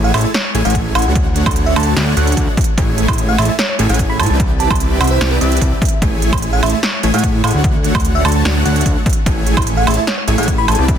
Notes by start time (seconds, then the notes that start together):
Already playing: A1 A3 E4 G#4 C#5 G#5
0.04 F#5
0.14 A1 A3 E4 G#4 C#5 E5 A5, closed hi-hat, high woodblock
0.18 closed hi-hat
0.21 E5, closed hi-hat
0.34 C#5, snare, closed hi-hat
0.45 C#5
0.54 A1 A3 E4 G#4 C#5 G#5, closed hi-hat
0.65 A1 A3 E4 G#4 C#5 F#5 G#5, closed hi-hat
0.70 closed hi-hat
0.75 kick, closed hi-hat
0.95 A1 A3 E4 G#4 C#5 F#5 G#5, closed hi-hat, high woodblock
0.99 closed hi-hat
1.02 D2 A3 D4 F#4 C#5 F#5, closed hi-hat
1.15 kick, closed hi-hat
1.36 closed hi-hat
1.46 D2 A3 D4 F#4 C#5 F#5, kick, closed hi-hat, high woodblock
1.51 closed hi-hat
1.56 closed hi-hat
1.66 E5
1.76 D2 A3 D4 F#4 C#5 A5, closed hi-hat, high woodblock
1.80 closed hi-hat
1.83 A5, closed hi-hat
1.96 D2 A3 D4 F#4 C#5 F#5, snare, closed hi-hat
2.17 D2 A3 D4 F#4 C#5 F#5, closed hi-hat
2.27 closed hi-hat
2.32 closed hi-hat
2.37 D2 A3 D4 F#4 C#5 F#5, kick, closed hi-hat
2.57 kick, closed hi-hat
2.61 closed hi-hat
2.64 closed hi-hat
2.78 A1 A3 E4 G#4 C#5 G#5, kick, closed hi-hat
2.98 closed hi-hat
3.08 A1 A3 E4 G#4 C#5 G#5, kick, closed hi-hat, high woodblock
3.13 closed hi-hat
3.18 closed hi-hat
3.29 F#5
3.38 A1 A3 E4 G#4 C#5 E5 A5, closed hi-hat, high woodblock
3.42 closed hi-hat
3.45 E5, closed hi-hat
3.59 C#5, snare, closed hi-hat
3.69 C#5
3.79 A1 A3 E4 G#4 C#5 G#5, closed hi-hat
3.89 A1 A3 E4 G#4 C#5 F#5 G#5, closed hi-hat
3.94 closed hi-hat
3.99 kick, closed hi-hat
4.10 B5
4.19 A2 A3 E4 G#4 C#5 G#5 A5, closed hi-hat, high woodblock
4.23 closed hi-hat
4.26 C2 C4 E4 G4 B4 D5 A5, closed hi-hat
4.40 kick, closed hi-hat
4.60 A5, closed hi-hat
4.70 C2 E4, kick, closed hi-hat, high woodblock
4.75 closed hi-hat
4.80 closed hi-hat
5.00 C2 C4 E4 G4 B4 E5 F#5, closed hi-hat, high woodblock
5.04 closed hi-hat
5.07 C5, closed hi-hat
5.21 C2 C4 E4 G4 B4 D5, snare, closed hi-hat
5.31 B4
5.41 C2 C4 E4 G4 B4 D5 E5, closed hi-hat
5.52 closed hi-hat
5.57 closed hi-hat
5.61 C2 C4 E4 G4 B4 D5, kick, closed hi-hat
5.82 kick, closed hi-hat
5.85 closed hi-hat
5.88 closed hi-hat
6.02 A1 A3 E4 G#4 C#5 G#5, kick, closed hi-hat
6.22 closed hi-hat
6.33 A1 A3 G#4 C#5 G#5, kick, closed hi-hat, high woodblock
6.38 closed hi-hat
6.42 closed hi-hat
6.53 F#5
6.63 A1 A3 E4 G#4 C#5 E5 A5, closed hi-hat, high woodblock
6.66 closed hi-hat
6.70 E5, closed hi-hat
6.83 C#5, snare, closed hi-hat
6.94 C#5
7.03 A1 A3 E4 G#4 C#5 G#5, closed hi-hat
7.14 A2 A3 E4 G#4 C#5 F#5 G#5, closed hi-hat
7.19 closed hi-hat
7.24 kick, closed hi-hat
7.44 A2 A3 E4 G#4 C#5 F#5 G#5, closed hi-hat, high woodblock
7.47 closed hi-hat
7.51 D2 A3 D4 F#4 C#5 F#5, closed hi-hat
7.64 kick, closed hi-hat
7.84 closed hi-hat
7.95 D2, kick, closed hi-hat, high woodblock
8.00 closed hi-hat
8.05 closed hi-hat
8.15 E5
8.25 D2 A3 D4 F#4 C#5 A5, closed hi-hat, high woodblock
8.28 closed hi-hat
8.32 A5, closed hi-hat
8.45 D2 A3 D4 F#4 C#5 F#5, snare, closed hi-hat
8.65 D2 A3 D4 F#4 C#5 F#5, closed hi-hat
8.76 closed hi-hat
8.81 closed hi-hat
8.86 D2 A3, kick, closed hi-hat
9.06 kick, closed hi-hat
9.10 closed hi-hat
9.13 closed hi-hat
9.26 A1 A3 E4 G#4 C#5 G#5, kick, closed hi-hat
9.47 closed hi-hat
9.57 A1, kick, closed hi-hat, high woodblock
9.62 closed hi-hat
9.67 closed hi-hat
9.77 F#5
9.87 A1 A3 E4 G#4 C#5 E5 A5, closed hi-hat, high woodblock
9.91 closed hi-hat
9.94 E5, closed hi-hat
10.07 C#5, snare, closed hi-hat
10.18 C#5
10.28 A1 A3 E4 G#4 C#5 G#5, closed hi-hat
10.38 A1 A3 E4 G#4 C#5 F#5 G#5, closed hi-hat
10.43 closed hi-hat
10.48 kick, closed hi-hat
10.58 B5
10.68 A1 A3 E4 G#4 C#5 G#5 A5, closed hi-hat, high woodblock
10.72 closed hi-hat
10.75 C2 C4 E4 G4 B4 D5 A5, closed hi-hat
10.88 kick, closed hi-hat